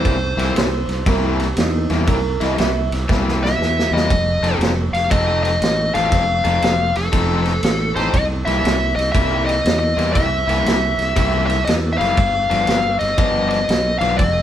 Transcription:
Already playing: overdriven electric guitar C3 G3 A#3 E4, lead electric guitar C5
0.05 fingered electric bass C2, kick, ride
0.37 fingered electric bass C2, overdriven electric guitar C3 G3 A#3 E4, snare, ride
0.55 fingered electric bass C2, clean electric guitar C5, snare, ride
0.88 fingered electric bass C2, snare, ride
1.06 fingered electric bass C2, overdriven electric guitar C3 G3 A#3 E4, clean electric guitar A#4, kick, snare, ride
1.26 clean electric guitar G4
1.39 snare, ride
1.56 fingered electric bass E2, clean electric guitar D#4, snare, ride
1.90 fingered electric bass E2, overdriven electric guitar C3 G3 A#3 E4, snare, ride
2.07 fingered electric bass C2, clean electric guitar A#4, kick, ride
2.41 fingered electric bass C2, overdriven electric guitar C3 G3 A#3 E4, clean electric guitar D#5, snare, ride
2.58 fingered electric bass C2, clean electric guitar E5, snare, ride
2.92 fingered electric bass C2, snare, ride
3.09 fingered electric bass C2, overdriven electric guitar C3 G3 A#3 E4, kick, snare
3.28 snare
3.44 lead electric guitar E5, snare
3.59 fingered electric bass E2, snare
3.79 snare
3.91 fingered electric bass E2, overdriven electric guitar C3 G3 A#3 E4, lead electric guitar D#5
3.97 snare
4.10 fingered electric bass F1, kick, ride
4.41 fingered electric bass F1, overdriven electric guitar F3 C4 D#4 A4, ride
4.45 snare
4.59 fingered electric bass F1, snare, ride
4.92 fingered electric bass F1, lead electric guitar F5, ride
4.96 snare
5.10 fingered electric bass F1, overdriven electric guitar F3 C4 D#4 A4, lead electric guitar D#5, kick, ride
5.43 lead electric guitar D#5, snare, ride
5.61 fingered electric bass A1, snare, ride
5.94 fingered electric bass A1, overdriven electric guitar F3 C4 D#4 A4, lead electric guitar F5, snare, ride
6.11 fingered electric bass F1, kick, snare, ride
6.44 fingered electric bass F1, overdriven electric guitar F3 C4 D#4 A4, snare, ride
6.62 fingered electric bass F1, snare, ride
6.95 fingered electric bass F1, lead electric guitar A4, snare, ride
7.12 fingered electric bass F1, overdriven electric guitar F3 C4 D#4 A4, kick, ride
7.45 snare, ride
7.63 fingered electric bass A1, snare, ride
7.96 fingered electric bass A1, overdriven electric guitar F3 C4 D#4 A4, lead electric guitar C5, snare, ride
8.13 fingered electric bass C2, lead electric guitar D#5, kick, ride
8.45 fingered electric bass C2, overdriven electric guitar C3 G3 A#3 E4, lead electric guitar E5, snare, ride
8.64 fingered electric bass C2, snare, ride
8.96 fingered electric bass C2, lead electric guitar D#5, ride
9.00 snare
9.12 fingered electric bass C2, overdriven electric guitar C3 G3 A#3 E4, lead electric guitar E5, kick, ride
9.46 lead electric guitar D#5, ride
9.50 snare
9.65 fingered electric bass E2, snare, ride
9.79 lead electric guitar D#5
9.97 fingered electric bass E2, overdriven electric guitar C3 G3 A#3 E4, snare, ride
10.13 fingered electric bass C2, lead electric guitar E5, kick, ride
10.48 fingered electric bass C2, overdriven electric guitar C3 G3 A#3 E4, snare, ride
10.65 fingered electric bass C2, snare, ride
10.98 fingered electric bass C2, snare, ride
11.16 fingered electric bass C2, overdriven electric guitar C3 G3 A#3 E4, kick, ride
11.46 lead electric guitar E5, ride
11.51 snare
11.65 fingered electric bass E2, lead electric guitar D#5, snare, ride
11.93 lead electric guitar E5
11.98 fingered electric bass F#1, overdriven electric guitar C3 G3 A#3 E4, lead electric guitar F5, ride
12.02 snare
12.17 fingered electric bass G1, kick, ride
12.50 fingered electric bass G1, overdriven electric guitar G2 F3 B3 D4, snare, ride
12.67 fingered electric bass G1, snare, ride
12.99 fingered electric bass G1, lead electric guitar D#5, snare, ride
13.18 fingered electric bass G1, overdriven electric guitar G2 F3 B3 D4, kick, ride
13.49 lead electric guitar D#5, snare, ride
13.69 fingered electric bass B1, snare, ride
13.99 fingered electric bass B1, overdriven electric guitar G2 F3 B3 D4, lead electric guitar F5, ride
14.03 snare
14.18 fingered electric bass F1, lead electric guitar D#5, kick, ride

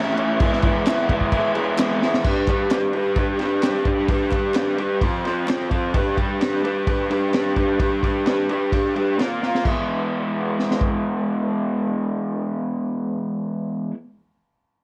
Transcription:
Already playing: overdriven electric guitar A2 E3 A3 C#4 E4
0.17 overdriven electric guitar A2 E3 A3 C#4 E4, crash
0.40 overdriven electric guitar E3 G#3 B3 E4, kick, crash
0.53 snare
0.62 overdriven electric guitar E3 G#3 B3, kick, crash
0.66 overdriven electric guitar E4
0.86 overdriven electric guitar E3 G#3 B3 E4, snare, clap, crash
1.09 overdriven electric guitar E3 G#3 B3 E4, kick, crash
1.21 kick
1.32 overdriven electric guitar E3 G#3 B3 E4, kick, crash
1.55 overdriven electric guitar E3 G#3 B3 E4, crash
1.78 overdriven electric guitar E3 G#3 B3 E4, snare, clap, crash
2.02 overdriven electric guitar E3 G#3 B3 E4, snare
2.14 snare
2.24 overdriven electric guitar G3 D4 G4 B4, kick, crash
2.47 overdriven electric guitar G3 D4 G4 B4, kick, clap, ride
2.70 overdriven electric guitar G3 D4 G4 B4, snare, clap, ride
2.93 overdriven electric guitar G3 D4 G4 B4, ride
3.16 overdriven electric guitar G3 D4 G4 B4, kick, ride
3.39 overdriven electric guitar G3 D4 G4 B4, snare, ride
3.62 overdriven electric guitar G3 D4 G4 B4, snare, clap, ride
3.85 overdriven electric guitar G3 D4 G4 B4, kick, ride
4.08 overdriven electric guitar G3 D4 G4 B4, kick, ride
4.32 overdriven electric guitar G3 D4 G4 B4, kick, clap, ride
4.54 overdriven electric guitar G3 D4 G4 B4, snare, clap, ride
4.78 overdriven electric guitar G3 D4 G4 B4, ride
5.01 overdriven electric guitar F3 C4 F4 C5, kick, ride
5.25 overdriven electric guitar F3 C4 F4 C5, snare, ride
5.47 overdriven electric guitar F3 C4 F4 C5, snare, clap, ride
5.70 overdriven electric guitar F3 C4 F4 C5, kick, ride
5.94 overdriven electric guitar G3 D4 G4 B4, kick, ride
6.17 overdriven electric guitar G3 D4 G4 B4, kick, ride
6.40 overdriven electric guitar G3 D4 G4 B4, snare, ride
6.63 overdriven electric guitar G3 D4 G4 B4, ride
6.87 overdriven electric guitar G3 D4 G4 B4, kick, ride
7.10 overdriven electric guitar G3 D4 G4 B4, ride
7.33 overdriven electric guitar G3 D4 G4 B4, snare, ride
7.56 overdriven electric guitar G3 D4 G4 B4, kick, ride
7.79 overdriven electric guitar G3 D4 G4 B4, kick, ride
8.03 overdriven electric guitar G3 D4 G4 B4, kick, ride
8.26 overdriven electric guitar G3 D4 G4 B4, snare, ride
8.49 overdriven electric guitar G3 D4 G4 B4, ride
8.72 overdriven electric guitar G3 D4 G4 B4, kick, ride
8.96 overdriven electric guitar G3 D4 G4 B4, ride
9.18 overdriven electric guitar A#3 F4 A#4 F5, snare, ride
9.42 overdriven electric guitar A#3 F4 A#4 F5, snare
9.55 snare
9.65 overdriven electric guitar E3 G#3 B3 E4, kick, crash
10.59 snare
10.71 snare
10.81 kick

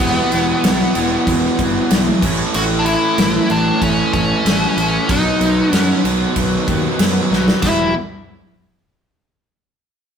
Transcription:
Already playing: distorted electric guitar B3, lead electric guitar B3
0.00 fingered electric bass E1, distorted electric guitar E2 B2 E3 G3 B3 E4, kick, crash
0.32 fingered electric bass E1, distorted electric guitar E2 B2 E3, crash
0.64 fingered electric bass B1, distorted electric guitar E2 B2 E3, snare, crash
0.95 fingered electric bass E1, distorted electric guitar E2 B2 E3, crash
1.27 fingered electric bass E1, distorted electric guitar E2 B2 E3, kick, crash
1.59 fingered electric bass G1, distorted electric guitar E2 B2 E3, kick, crash
1.91 fingered electric bass B1, distorted electric guitar E2 B2 E3, snare, crash
2.22 fingered electric bass A1, distorted electric guitar A2 E3 A3 C#4 E4, kick, crash
2.54 fingered electric bass A1, distorted electric guitar A2 E3 A3, lead electric guitar F#4, crash
2.79 lead electric guitar D4
2.85 distorted electric guitar A2 E3 A3, lead electric guitar E4, crash
3.18 fingered electric bass A1, distorted electric guitar A2 E3 A3, snare, crash
3.49 fingered electric bass A1, distorted electric guitar A2 E3 A3, lead electric guitar D4, crash
3.81 fingered electric bass A1, distorted electric guitar A2 E3 A3, lead electric guitar C#4, kick, crash
4.13 fingered electric bass A1, distorted electric guitar A2 E3 A3, lead electric guitar C#4, kick, crash
4.45 fingered electric bass A1, distorted electric guitar A2 E3 A3 C#4 E4, snare, crash
4.76 fingered electric bass A1, distorted electric guitar A2 E3 A3, crash
5.08 fingered electric bass B1, distorted electric guitar B2 D#3 F#3 B3 D#4, lead electric guitar D#4, kick, crash
5.40 fingered electric bass B1, distorted electric guitar B2 F#3 B3, crash
5.72 fingered electric bass F#2, distorted electric guitar B2 F#3 B3, lead electric guitar C#4, snare, crash
6.04 fingered electric bass B1, distorted electric guitar B2 F#3 B3, crash
6.36 fingered electric bass B1, distorted electric guitar B2 F#3 B3, kick, crash
6.68 fingered electric bass D#2, distorted electric guitar B2 F#3 B3, kick, crash
6.99 fingered electric bass F#2, distorted electric guitar B2 F#3 B3, snare, crash
7.31 fingered electric bass B1, distorted electric guitar B2 D#3 F#3 B3 D#4, snare
7.48 snare
7.62 fingered electric bass E1, distorted electric guitar E2 B2 E3 B3 E4 G4, lead electric guitar E4, kick, snare, crash

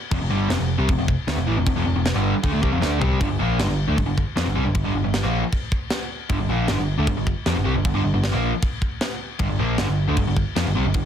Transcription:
0.11 picked electric bass F1, overdriven electric guitar F2 C3, kick, crash
0.21 picked electric bass F1, overdriven electric guitar F2 C3
0.30 picked electric bass G1, overdriven electric guitar G2 D3 G3
0.49 picked electric bass F1, overdriven electric guitar F2 C3, snare, crash
0.59 picked electric bass F1, overdriven electric guitar F2 C3
0.78 picked electric bass C2, overdriven electric guitar C3 G3
0.89 picked electric bass F1, overdriven electric guitar F2 C3, kick, crash
0.98 picked electric bass F1, overdriven electric guitar F2 C3
1.08 kick
1.27 picked electric bass D2, overdriven electric guitar D3 A3, snare, crash
1.37 picked electric bass F1, overdriven electric guitar F2 C3
1.47 picked electric bass A1, overdriven electric guitar A2 E3
1.57 picked electric bass F1, overdriven electric guitar F2 C3
1.67 picked electric bass F1, overdriven electric guitar F2 C3, kick, crash
1.76 picked electric bass F1, overdriven electric guitar F2 C3
1.85 picked electric bass F1, overdriven electric guitar F2 C3
1.96 picked electric bass F1, overdriven electric guitar F2 C3
2.06 snare, crash
2.14 picked electric bass G1, overdriven electric guitar G2 D3 G3
2.43 picked electric bass D2, overdriven electric guitar D3 A3, kick, crash
2.53 picked electric bass D2, overdriven electric guitar D3 A3
2.62 picked electric bass C2, overdriven electric guitar C3 G3, kick
2.71 picked electric bass F1, overdriven electric guitar F2 C3
2.81 picked electric bass D2, overdriven electric guitar D3 A3 D4, snare
3.00 picked electric bass C2, overdriven electric guitar C3 G3 C4, floor tom
3.20 overdriven electric guitar G2 D3, kick, crash
3.29 picked electric bass G1, overdriven electric guitar G2 D3
3.39 picked electric bass A#1, overdriven electric guitar A#2 F3 A#3
3.59 picked electric bass G1, overdriven electric guitar G2 D3, snare, crash
3.69 picked electric bass G1, overdriven electric guitar G2 D3
3.88 picked electric bass D2, overdriven electric guitar D3 A3
3.97 picked electric bass G1, overdriven electric guitar G2 D3, kick, crash
4.06 picked electric bass G1, overdriven electric guitar G2 D3
4.18 kick
4.36 picked electric bass F2, overdriven electric guitar F3 C4, snare, crash
4.45 picked electric bass G1, overdriven electric guitar G2 D3
4.55 picked electric bass C2, overdriven electric guitar C3 G3
4.65 picked electric bass G1, overdriven electric guitar G2 D3
4.75 picked electric bass G1, overdriven electric guitar G2 D3, kick, crash
4.84 picked electric bass G1, overdriven electric guitar G2 D3
4.95 picked electric bass G1, overdriven electric guitar G2 D3
5.04 picked electric bass G1, overdriven electric guitar G2 D3
5.14 snare, crash
5.23 picked electric bass A#1, overdriven electric guitar A#2 F3 A#3
5.52 kick, crash
5.72 kick
5.90 snare, crash
6.29 picked electric bass G1, overdriven electric guitar G2 D3, kick, crash
6.39 picked electric bass G1, overdriven electric guitar G2 D3
6.49 picked electric bass A#1, overdriven electric guitar A#2 F3 A#3
6.68 picked electric bass G1, overdriven electric guitar G2 D3, snare, crash
6.78 picked electric bass G1, overdriven electric guitar G2 D3
6.98 picked electric bass D2, overdriven electric guitar D3 A3
7.07 overdriven electric guitar G2 D3, kick, crash
7.17 picked electric bass G1, overdriven electric guitar G2 D3
7.27 kick
7.46 picked electric bass F2, overdriven electric guitar F3 C4, snare, crash
7.56 picked electric bass G1, overdriven electric guitar G2 D3
7.65 picked electric bass C2, overdriven electric guitar C3 G3
7.75 picked electric bass G1, overdriven electric guitar G2 D3
7.85 picked electric bass G1, overdriven electric guitar G2 D3, kick, crash
7.94 picked electric bass G1, overdriven electric guitar G2 D3
8.04 picked electric bass G1, overdriven electric guitar G2 D3
8.14 picked electric bass G1, overdriven electric guitar G2 D3
8.24 snare, crash
8.32 picked electric bass A#1, overdriven electric guitar A#2 F3 A#3
8.63 kick, crash
8.82 kick
9.01 snare, crash
9.39 picked electric bass G1, overdriven electric guitar G2 D3, kick, crash
9.49 picked electric bass G1, overdriven electric guitar G2 D3
9.59 picked electric bass A#1, overdriven electric guitar A#2 F3 A#3
9.78 picked electric bass G1, overdriven electric guitar G2 D3, snare, crash
9.88 picked electric bass G1, overdriven electric guitar G2 D3
10.08 picked electric bass D2, overdriven electric guitar D3 A3
10.17 picked electric bass G1, overdriven electric guitar G2 D3, kick, crash
10.27 picked electric bass G1, overdriven electric guitar G2 D3
10.37 kick
10.56 picked electric bass F2, overdriven electric guitar F3 C4, snare, crash
10.66 picked electric bass G1, overdriven electric guitar G2 D3
10.75 picked electric bass C2, overdriven electric guitar C3 G3
10.85 picked electric bass G1, overdriven electric guitar G2 D3
10.94 picked electric bass G1, overdriven electric guitar G2 D3, kick, crash

